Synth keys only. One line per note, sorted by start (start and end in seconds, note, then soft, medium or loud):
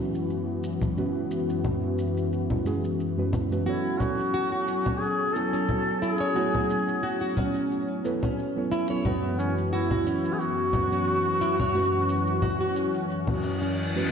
0.00 0.92 F#2 medium
0.00 0.92 G#3 medium
0.00 0.93 C#4 medium
0.00 0.93 F#4 medium
0.00 0.94 B4 medium
0.95 2.61 F#2 medium
0.95 2.61 G#3 medium
0.95 2.62 C#4 medium
0.95 2.62 F#4 medium
0.99 2.63 B4 medium
2.65 2.80 F#2 medium
2.65 2.81 G#3 medium
2.65 2.81 C#4 medium
2.65 2.81 F#4 medium
2.65 2.81 G#4 medium
3.17 3.46 F#2 medium
3.17 3.47 G#3 medium
3.17 3.47 C#4 medium
3.17 3.47 F#4 medium
3.17 3.47 B4 medium
3.50 3.62 F#2 medium
3.50 3.63 G#3 medium
3.50 3.63 C#4 medium
3.50 3.63 F#4 medium
3.50 3.63 B4 medium
3.65 5.30 F#3 medium
3.65 5.31 B3 medium
3.65 5.31 E4 medium
3.65 5.32 A4 medium
3.69 5.33 C#5 medium
5.33 6.32 F#3 medium
5.33 6.32 B3 medium
5.33 6.33 E4 medium
5.33 6.33 A4 medium
5.33 6.33 C#5 medium
6.34 8.00 F#3 medium
6.34 8.01 A3 medium
6.34 8.00 B3 medium
6.34 8.01 E4 medium
6.38 8.02 C#5 medium
8.04 8.19 F#3 medium
8.04 8.20 B3 medium
8.04 8.20 E4 medium
8.04 8.20 A4 medium
8.04 8.20 B4 medium
8.56 8.86 F#3 medium
8.56 8.86 B3 medium
8.56 8.86 E4 medium
8.56 8.86 A4 medium
8.56 8.87 C#5 medium
8.89 9.01 F#3 medium
8.89 9.02 B3 medium
8.89 9.02 E4 medium
8.89 9.02 A4 medium
8.89 9.02 C#5 medium
9.04 10.70 F#2 medium
9.04 10.70 G#3 medium
9.04 10.71 C#4 medium
9.04 10.71 F#4 medium
9.04 10.72 B4 medium
10.72 11.71 F#2 medium
10.72 11.71 G#3 medium
10.72 11.72 C#4 medium
10.72 11.72 F#4 medium
10.76 11.73 B4 medium
11.73 13.39 F#2 medium
11.73 13.39 G#3 medium
11.73 13.40 C#4 medium
11.73 13.40 F#4 medium
11.77 13.41 B4 medium
13.95 14.08 F#2 medium
13.95 14.09 G#3 medium
13.95 14.09 C#4 medium
13.95 14.09 F#4 medium
13.95 14.09 B4 medium